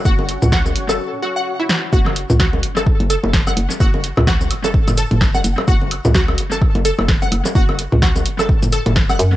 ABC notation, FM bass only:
X:1
M:4/4
L:1/16
Q:"Swing 16ths" 1/4=128
K:F#m
V:1 name="FM bass" clef=bass
F,,,3 C,,3 F,,,2 z8 | F,,,3 C,,3 F,,,3 F,,,2 F,,,3 F,,, z | F,,,3 C,,3 F,,,3 F,,,2 F,,,3 F,,, z | F,,,3 C,,3 F,,,3 F,,,2 F,,,3 F,,, z |
F,,,3 C,,3 F,,,3 F,,,2 F,,,3 F,,2 |]